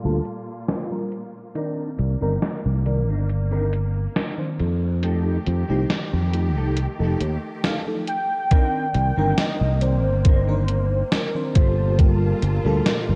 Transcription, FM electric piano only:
0.03 0.15 G3 medium
0.03 0.15 A#3 medium
0.03 0.16 F4 medium
0.03 0.16 A4 loud
0.90 1.09 G3 medium
0.90 1.09 A#3 medium
0.90 1.09 F4 medium
0.90 1.10 A#4 medium
1.55 2.16 D#3 medium
1.55 2.16 C4 medium
1.55 2.17 A#4 medium
1.55 2.16 D5 medium
2.21 2.32 D#3 medium
2.21 2.33 C4 medium
2.21 2.33 D4 medium
2.21 2.33 A#4 loud
2.85 3.46 D#3 medium
2.85 3.46 C4 medium
2.85 3.47 A#4 medium
2.85 3.47 D5 medium
3.51 3.63 D#3 medium
3.51 3.63 C4 medium
3.51 3.63 D4 medium
3.51 3.63 A#4 loud
4.38 4.56 D#3 medium
4.38 4.57 C4 medium
4.38 4.57 D4 medium
4.38 4.57 C5 medium
5.03 5.64 F3 medium
5.03 5.64 A3 medium
5.03 5.64 D#4 medium
5.03 5.64 G4 medium
5.68 5.80 F3 medium
5.68 5.80 A3 medium
5.68 5.81 D#4 medium
5.68 5.81 G4 loud
6.33 6.94 F3 medium
6.33 6.94 A3 medium
6.33 6.94 D#4 medium
6.33 6.95 G4 medium
6.99 7.11 F3 medium
6.99 7.11 A3 medium
6.99 7.11 D#4 medium
6.99 7.11 G4 loud
7.86 8.05 F3 medium
7.86 8.05 A3 medium
7.86 8.05 D#4 medium
7.86 8.05 A4 medium
8.51 9.12 D#3 medium
8.51 9.12 C4 medium
8.51 9.12 A#4 loud
8.51 9.12 D5 medium
9.17 9.28 D#3 loud
9.17 9.29 C4 medium
9.17 9.29 D4 medium
9.17 9.29 A#4 loud
9.81 10.42 D#3 medium
9.81 10.42 C4 medium
9.81 10.43 A#4 medium
9.81 10.42 D5 medium
10.47 10.59 D#3 loud
10.47 10.59 C4 medium
10.47 10.59 D4 medium
10.47 10.60 A#4 loud
11.34 11.53 D#3 medium
11.34 11.53 C4 medium
11.34 11.53 D4 medium
11.34 11.53 C5 medium
11.98 12.59 G3 medium
11.98 12.60 A#3 medium
11.98 12.60 F4 medium
11.98 12.60 G4 medium
12.65 12.76 G3 loud
12.65 12.77 A#3 medium
12.65 12.77 F4 medium
12.65 12.77 A4 loud

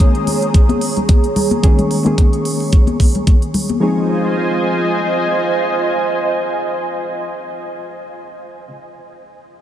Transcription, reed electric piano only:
0.00 1.60 D#3 medium
0.00 1.61 G#3 medium
0.00 1.61 A#3 medium
0.00 1.61 C#4 medium
0.00 1.61 G#4 medium
1.63 2.02 D#3 medium
1.63 2.02 G#3 medium
1.63 2.02 A#3 medium
1.63 2.02 C#4 medium
1.63 2.03 G#4 loud
2.05 3.78 D#3 medium
2.05 3.79 G#3 medium
2.05 3.79 A#3 medium
2.05 3.79 C#4 medium
2.05 3.79 G#4 medium
3.80 8.66 F3 medium
3.80 8.67 G#3 medium
3.80 8.68 C4 medium
3.80 8.69 D#4 medium
3.80 8.69 G#4 medium

